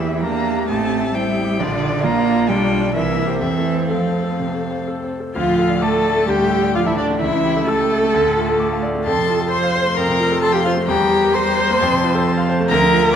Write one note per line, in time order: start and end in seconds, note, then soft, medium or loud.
0.00 0.67 E2 soft
0.00 0.25 E3 medium
0.00 0.17 A#3 soft
0.00 0.25 E4 medium
0.00 1.57 G4 soft
0.00 0.22 E5 medium
0.08 0.33 E5 soft
0.23 0.68 A#3 medium
0.23 0.68 D4 medium
0.23 0.48 A#4 soft
0.23 0.68 A#5 medium
0.39 0.63 E5 soft
0.54 0.69 G4 soft
0.68 1.57 A1 medium
0.68 1.14 A3 medium
0.68 1.17 C4 medium
0.68 1.16 A5 medium
0.84 1.09 C4 soft
0.99 1.24 E5 soft
1.15 1.61 G3 medium
1.15 1.62 E4 medium
1.15 1.39 C5 medium
1.15 1.62 G5 medium
1.29 1.54 E5 soft
1.44 1.60 G4 medium
1.59 2.47 A#1 medium
1.59 2.05 D3 medium
1.59 2.04 D4 medium
1.59 2.01 F4 medium
1.59 2.06 D5 medium
1.75 1.98 D4 soft
1.89 2.13 D5 soft
2.04 2.50 A#3 medium
2.04 2.48 D4 medium
2.04 2.28 F4 medium
2.04 2.48 F4 medium
2.04 2.50 A#5 medium
2.19 2.43 D5 soft
2.35 2.50 F4 soft
2.48 2.94 B1 medium
2.48 2.95 G3 medium
2.48 2.94 D4 medium
2.48 2.94 F4 medium
2.48 2.94 G5 medium
2.65 2.89 D4 soft
2.80 2.94 F4 soft
2.80 2.94 D5 soft
2.94 3.41 C2 medium
2.94 3.42 E3 medium
2.94 3.42 E4 medium
2.94 3.42 A#4 medium
2.94 3.40 E5 medium
3.11 3.36 A#3 soft
3.27 3.41 G4 soft
3.27 3.41 C5 soft
3.40 4.36 F2 medium
3.40 3.92 E3 medium
3.40 5.08 C4 medium
3.40 3.90 A4 medium
3.40 3.89 E5 medium
3.58 3.84 A3 soft
3.74 4.00 C5 soft
3.89 4.87 F3 medium
3.89 5.12 A4 soft
3.89 4.17 A4 soft
3.89 4.85 F5 medium
4.07 4.33 C5 soft
4.23 4.49 A4 soft
4.40 4.65 C3 soft
4.55 4.81 A3 soft
4.71 4.97 C5 soft
4.88 5.13 A4 soft
5.04 5.29 C5 soft
5.20 5.36 A4 soft
5.34 6.26 D2 medium
5.34 5.84 F3 medium
5.34 5.78 F4 medium
5.34 5.79 F4 medium
5.34 5.84 F5 medium
5.47 5.66 A2 soft
5.58 5.77 A4 soft
5.69 5.88 D5 soft
5.82 6.28 A3 medium
5.82 6.27 A4 medium
5.82 6.29 A4 medium
5.82 6.31 A5 medium
5.82 6.00 D6 medium
5.94 6.12 A5 soft
6.05 6.24 D5 soft
6.16 6.35 A3 soft
6.27 7.18 D2 soft
6.27 6.76 G3 medium
6.27 6.74 G4 medium
6.27 6.77 G5 medium
6.39 6.58 A2 soft
6.51 6.70 A4 soft
6.63 6.81 D5 soft
6.75 6.87 F3 medium
6.75 6.86 F4 medium
6.75 6.80 F4 medium
6.75 6.88 F5 medium
6.75 6.93 D6 medium
6.86 6.98 E3 medium
6.86 6.99 E4 medium
6.86 6.97 E4 medium
6.86 6.97 E5 medium
6.86 7.05 A5 soft
6.96 7.21 D3 medium
6.96 7.23 D4 medium
6.96 7.20 D4 medium
6.96 7.06 D5 medium
6.96 7.17 D5 medium
7.10 7.21 A3 soft
7.19 8.12 C#2 medium
7.19 7.66 E3 medium
7.19 7.68 E4 medium
7.19 7.70 E4 medium
7.19 7.66 E5 medium
7.33 7.52 C#3 soft
7.44 7.63 G4 soft
7.57 7.75 A4 medium
7.67 8.80 A3 medium
7.67 8.82 A4 medium
7.67 8.83 A4 medium
7.67 8.80 A5 medium
7.67 7.87 E6 medium
7.80 7.98 G5 soft
7.91 8.09 E5 soft
8.03 8.14 A3 soft
8.14 9.03 D2 medium
8.25 8.44 A2 soft
8.37 8.55 F4 soft
8.49 8.67 A4 medium
8.59 8.78 D6 medium
8.72 8.90 F5 soft
8.82 9.01 D5 medium
8.95 9.06 A3 medium
9.04 9.95 F2 medium
9.04 9.48 F3 medium
9.04 9.47 A4 medium
9.04 9.48 A5 medium
9.04 9.49 C6 medium
9.18 9.36 C3 soft
9.30 9.47 F4 soft
9.41 9.59 A4 medium
9.50 10.40 F3 medium
9.50 9.96 C5 medium
9.50 9.99 C6 medium
9.50 10.41 C6 medium
9.50 9.70 C6 medium
9.63 9.81 F5 medium
9.75 9.93 C5 medium
9.86 10.04 A3 medium
9.97 10.85 F2 medium
9.97 10.42 A#4 medium
9.97 10.41 A#5 medium
10.08 10.26 C3 soft
10.20 10.38 F4 medium
10.32 10.50 A4 medium
10.42 10.88 F3 medium
10.42 10.54 A4 loud
10.42 10.54 A5 medium
10.42 10.61 C6 medium
10.42 10.88 C6 medium
10.52 10.59 G4 medium
10.52 10.72 F5 medium
10.52 10.64 G5 medium
10.65 10.74 F4 medium
10.65 10.84 C5 medium
10.65 10.73 F5 medium
10.77 10.88 A3 medium
10.86 11.77 E2 medium
10.86 11.34 G3 medium
10.86 11.37 G4 medium
10.86 11.35 G5 medium
10.86 11.34 A#5 medium
10.99 11.18 E3 soft
11.11 11.30 G4 medium
11.23 11.41 A#4 medium
11.34 11.82 G3 medium
11.34 12.48 C5 loud
11.34 11.81 A#5 medium
11.34 12.47 C6 medium
11.34 11.53 C6 medium
11.47 11.64 G5 medium
11.59 11.76 C5 medium
11.70 11.80 A#3 medium
11.80 12.68 F2 medium
11.80 12.70 F3 medium
11.80 12.67 A5 medium
11.93 12.10 C3 medium
12.04 12.21 F4 medium
12.15 12.32 A4 medium
12.26 12.43 C6 medium
12.37 12.55 F5 medium
12.49 12.66 C5 medium
12.60 12.70 A3 medium
12.68 13.16 D2 medium
12.68 13.14 F3 medium
12.68 13.16 A#4 loud
12.68 13.13 A#5 medium
12.68 13.11 A#5 loud
12.82 13.00 D3 medium
12.93 13.11 F4 medium
13.04 13.16 A#4 medium